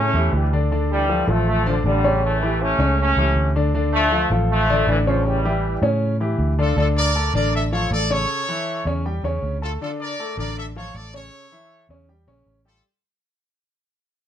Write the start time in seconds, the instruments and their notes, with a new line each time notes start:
Already playing: fingered electric bass A2, trombone section A3 C#4
0.14 fingered electric bass E2, grand piano E3 E4 G4
0.33 fingered electric bass D2, trombone section E3 G3
0.53 grand piano D3 D4 D5
0.72 grand piano D3 D4 D5
0.92 trombone section E3 G3
1.09 grand piano F3 F4 A4
1.28 fingered electric bass A1, grand piano F3 F4 A4, trombone section F3 A3
1.48 trombone section F3 A3
1.66 grand piano D3 D4 D5, trombone section D3 F3
1.84 fingered electric bass A1, grand piano D3 D4 D5, trombone section D3 G3
2.04 grand piano C#3 C#4 C#5
2.24 trombone section E3 A3
2.42 grand piano E3 E4 G4
2.61 trombone section A3 C#4
2.79 fingered electric bass C#2, grand piano C#3 C#4 C#5
2.99 trombone section A3 C#4
3.17 fingered electric bass C#2, grand piano E3 E4 G4
3.35 fingered electric bass D2
3.56 grand piano D3 D4 D5
3.74 grand piano D3 D4 D5
3.93 trombone section F3 A3
4.12 grand piano F3 F4 A4
4.30 fingered electric bass A1, grand piano F3 F4 A4
4.50 trombone section F3 A3
4.69 grand piano D3 D4 D5
4.87 fingered electric bass A1, trombone section A2 E3, grand piano D3 D4 D5
5.07 grand piano C#3 C#4 C#5, trombone section D3 F3
5.26 trombone section E3 G3
5.45 grand piano E3 E4 G4
5.82 fingered electric bass A2, grand piano C#3 C#4 C#5
6.20 grand piano E3 E4 G4
6.38 fingered electric bass D2
6.58 grand piano D3 D4 D5, trumpet section F4 A4
6.76 fingered electric bass D2, grand piano D3 D4 D5, trumpet section F4 A4
6.97 trumpet section A#4 D5
7.15 grand piano A3 A4 A5
7.34 fingered electric bass A1, grand piano D3 D4 D5, trumpet section A#4 D5
7.54 trumpet section A4 E5
7.72 grand piano F3 F4 F5, trumpet section A4 C#5
7.91 fingered electric bass A1, grand piano A3 A4 A5, trumpet section A4 D5
8.10 grand piano C#3 C#4 C#5, trumpet section A4 C#5
8.48 grand piano E3 E4 E5
8.85 fingered electric bass E2, grand piano C#3 C#4 C#5
9.05 grand piano G3 G4 G5
9.23 fingered electric bass E2, grand piano C#3 C#4 C#5
9.42 fingered electric bass D2
9.62 grand piano A3 A4 A5, trumpet section F4 A4
9.81 grand piano D3 D4 D5, trumpet section F4 A4
10.01 trumpet section A#4 D5
10.19 grand piano A3 A4 A5
10.37 fingered electric bass A1, grand piano D3 D4 D5, trumpet section A#4 D5
10.58 trumpet section A4 E5
10.76 grand piano F3 F4 F5, trumpet section A4 C#5
10.94 fingered electric bass A1, grand piano A3 A4 A5, trumpet section A4 D5
11.14 grand piano C#3 C#4 C#5, trumpet section A4 C#5
11.52 grand piano E3 E4 E5
11.89 fingered electric bass E2, grand piano C#3 C#4 C#5
12.09 grand piano G3 G4 G5
12.27 fingered electric bass A#1, grand piano C#3 C#4 C#5
12.46 fingered electric bass A1
12.65 grand piano G3 G4 G5, trumpet section F4 A4